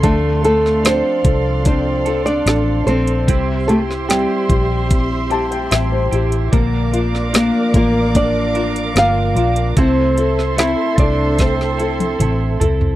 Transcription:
<<
  \new Staff \with { instrumentName = "String section" } { \time 4/4 \key d \minor \tempo 4 = 74 <a' d'' f'' c'''>1 | <g' c'' e'' c'''>1 | <bes' d'' f'' d'''>1 | <a' c'' e'' c'''>1 | }
  \new Staff \with { instrumentName = "Nylon-string guitar" } { \time 4/4 \key d \minor <a a'>8 <a a'>8 <c' c''>4 <c' c''>8. <d' d''>8. <c' c''>8~ | <c' c''>8 <a a'>8 <g g'>2~ <g g'>8 r8 | r4 <bes bes'>8 <bes bes'>8 <d' d''>4 <f' f''>4 | <c' c''>4 <e' e''>8 <d' d''>8 <c' c''>4. r8 | }
  \new Staff \with { instrumentName = "Felt piano" } { \time 4/4 \key d \minor << { r1 | r2 r8 a''16 g''16 e''16 c''8. | r1 | r1 | } \\ { d'8 a'8 d'8 a'8 d'8 a'8 d'8 a'8 | c'8 g'8 c'8 g'8 c'8 g'8 c'8 g'8 | bes8 f'8 bes8 f'8 bes8 f'8 bes8 f'8 | c'8 a'8 c'8 a'8 c'8 a'8 c'8 a'8 | } >> }
  \new Staff \with { instrumentName = "Clean electric guitar" } { \time 4/4 \key d \minor <d f c' d' a'>8 <c' d' a'>8 <f c' d' a'>4. <c' d' a'>8 <f c' d' a'>8 <c' d' a'>8 | <c g c' e' g'>8 <c' e' g'>8 <g c' e' g'>4. <c' e' g'>8 <g c' e' g'>8 <c' e' g'>8 | <bes, d f bes d' bes'>8 <f bes d' bes'>8 <f bes d' bes'>4. <f bes d' bes'>8 <f bes d' bes'>8 <f bes d' bes'>8 | <c a c' e' a'>8 <c' e' a'>8 <a c' e' a'>4. <c' e' a'>8 <a c' e' a'>8 <c' e' a'>8 | }
  \new Staff \with { instrumentName = "Fingered electric bass" } { \clef bass \time 4/4 \key d \minor d,4~ d,16 r16 c,4. a,,8 bes,,8 | c,4~ c,16 r16 bes,,4. a,,8 a,,8 | bes,,4~ bes,,16 r16 a,,4. g,,8 bes,,8 | c,4~ c,16 r16 c,4. a,,8 c,8 | }
  \new DrumStaff \with { instrumentName = "Drums" } \drummode { \time 4/4 <hh bd>8 hh16 sn16 <hh sn>8 <hh bd>8 <hh bd>8 hh16 hh16 <hh sn>8 hh16 hh16 | <hh bd>8 hh16 sn16 <hh sn>8 <hh bd>8 <hh bd>8 hh16 hh16 <hh sn>8 hh16 hh16 | <hh bd>8 hh16 sn16 <hh sn>8 <hh bd>8 <hh bd>8 hh16 hh16 <hh sn>8 hh16 hh16 | <hh bd>8 hh16 sn16 <hh sn>8 <hh bd>8 <hh bd sn>16 sn16 hh16 <hh tommh>16 <hh toml>8 <hh tomfh>16 tomfh16 | }
>>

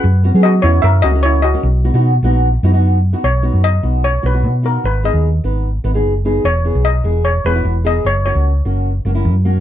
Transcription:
<<
  \new Staff \with { instrumentName = "Steel pan" } { \time 4/4 \key b \major \tempo 4 = 150 <b' fis''>4 <fis' dis''>8 <e' cis''>8 <ais' e''>8 <fis' dis''>8 <e' cis''>8 <fis' dis''>8~ | <fis' dis''>2. r4 | cis''4 dis''4 cis''8 b'4 ais'8 | b'8 dis''4 r2 r8 |
cis''4 dis''4 cis''8 b'4 dis''8 | cis''8 cis''4 r2 r8 | }
  \new Staff \with { instrumentName = "Nylon-string guitar" } { \time 4/4 \key b \major r8 <b cis' fis'>16 <b cis' gis'>8 r16 <b cis' fis'>8 r8 <ais cis' fis'>16 <ais cis' fis'>8 r8 <ais cis' fis'>16 | r8 <b dis' fis'>16 <b dis' fis'>8 r16 <b dis' fis'>8 r8 <b dis' fis'>16 <b dis' fis'>8 r8 <b dis' fis'>16 | r8 <b dis' fis'>8 r8 <b dis' fis'>8 r8 <b dis' fis'>16 <b dis' fis'>8 r16 <b dis' fis'>8 | r8 <b dis' gis'>8 r8 <b dis' b'>8 r8 <b dis' b'>16 <b dis' gis'>8 r16 <b dis' gis'>8 |
r8 <b e' gis'>8 r8 <b e' gis'>8 r8 <b e' gis'>16 <b e' fis'>8 r16 <b e' gis'>8 | r8 <ais cis' fis'>8 r8 <ais cis' fis'>8 r8 <ais cis' fis'>16 <ais cis' e'>8 r16 <ais cis' fis'>8 | }
  \new Staff \with { instrumentName = "Fingered electric bass" } { \clef bass \time 4/4 \key b \major fis,8. fis8. e,8 fis,8 cis,4. | b,,8. b,8. ais,,4 fis,4. | b,,8. fis,8. b,,4 b,,8 b,4 | gis,,8. dis,8. gis,,4 gis,,8 fis,,4 |
e,,8. b,,8. e,,4 e,,8 e,,4 | fis,,8. cis,8. fis,,4 fis,,8 fis,4 | }
>>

